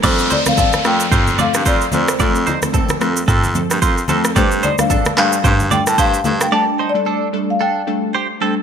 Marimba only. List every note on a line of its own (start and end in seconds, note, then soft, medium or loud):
0.05 0.17 C5 medium
0.32 0.48 D5 medium
0.48 0.53 F5 loud
0.59 0.84 F5 loud
0.87 1.41 G5 loud
1.41 1.67 F5 loud
1.67 1.79 D5 medium
1.94 2.08 C5 medium
2.10 3.13 C5 medium
4.37 4.64 C5 medium
4.64 4.71 D5 medium
4.80 5.15 F5 loud
5.18 5.73 F5 loud
5.72 5.88 G5 loud
5.88 5.98 A5 loud
5.99 6.43 F5 loud
6.42 6.52 G5 medium
6.53 6.86 A5 loud
6.89 7.51 D5 medium
7.50 7.55 F5 medium
7.62 8.38 G5 medium